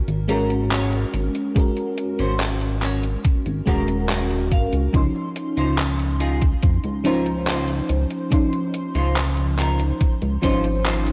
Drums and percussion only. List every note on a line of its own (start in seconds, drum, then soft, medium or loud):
0.08 closed hi-hat soft
0.29 closed hi-hat medium
0.50 closed hi-hat medium
0.71 clap loud
0.71 closed hi-hat medium
0.93 closed hi-hat soft
1.14 closed hi-hat medium
1.35 closed hi-hat medium
1.56 kick loud
1.56 closed hi-hat medium
1.77 closed hi-hat soft
1.98 closed hi-hat medium
2.19 closed hi-hat medium
2.40 clap loud
2.40 closed hi-hat medium
2.61 closed hi-hat soft
2.82 clap medium
2.82 closed hi-hat medium
3.03 closed hi-hat soft
3.25 kick loud
3.25 closed hi-hat medium
3.46 closed hi-hat soft
3.67 kick medium
3.67 closed hi-hat medium
3.88 closed hi-hat medium
4.09 clap loud
4.09 closed hi-hat medium
4.31 closed hi-hat soft
4.52 kick loud
4.52 closed hi-hat medium
4.73 closed hi-hat soft
4.94 kick loud
4.94 closed hi-hat medium
5.36 closed hi-hat medium
5.57 closed hi-hat soft
5.78 clap loud
5.78 closed hi-hat medium
5.99 closed hi-hat soft
6.20 closed hi-hat medium
6.42 kick loud
6.42 closed hi-hat soft
6.63 kick loud
6.63 closed hi-hat medium
6.84 closed hi-hat soft
7.05 closed hi-hat medium
7.26 closed hi-hat soft
7.47 clap loud
7.47 closed hi-hat medium
7.68 closed hi-hat soft
7.89 closed hi-hat medium
8.11 closed hi-hat soft
8.32 kick loud
8.32 closed hi-hat medium
8.53 closed hi-hat soft
8.74 closed hi-hat medium
8.95 closed hi-hat soft
9.16 clap loud
9.16 closed hi-hat medium
9.37 closed hi-hat soft
9.59 clap medium
9.59 closed hi-hat medium
9.80 closed hi-hat soft
10.01 kick loud
10.01 closed hi-hat medium
10.22 closed hi-hat soft
10.43 kick medium
10.43 closed hi-hat medium
10.64 closed hi-hat soft
10.85 clap loud
10.85 closed hi-hat medium
11.07 closed hi-hat soft